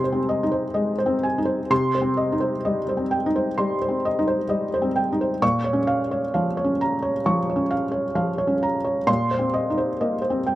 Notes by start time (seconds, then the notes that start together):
Already playing: C3 G#3 C4 D#4 C5 D#5 G#5 C6
0.04 C5
0.12 C4
0.29 D#5
0.43 D#4
0.52 C5
0.74 G#3 D#5
0.98 C5
1.06 C4
1.23 G#5
1.38 D#4
1.45 C5
1.70 C3 C6
1.95 C5
2.02 C4
2.17 D#5
2.32 D#4
2.40 C5
2.65 G3 D#5
2.89 C5
2.97 C4
3.11 G5
3.26 D#4
3.36 C5
3.58 G3 C6
3.82 C5
3.88 C4
4.05 D#5
4.19 D#4
4.27 C5
4.49 G3 D#5
4.74 C5
4.82 C4
4.96 G5
5.12 D#4
5.21 C5
5.42 A#2 C#6
5.64 C#5
5.73 C#4
5.87 F5
6.11 C#5
6.34 F3 F5
6.57 C#5
6.64 C#4
6.81 A#5
7.02 C#5
7.26 F3 C#6
7.50 C#5
7.56 C#4
7.71 F5
7.92 C#5
8.15 F3 F5
8.38 C#5
8.47 C#4
8.63 A#5
8.84 C#5
9.07 A#2 C6
9.31 C5
9.39 C4
9.54 D#5
9.70 D#4
9.78 C5
10.01 A#3 D#5
10.22 C5
10.30 C4
10.47 G5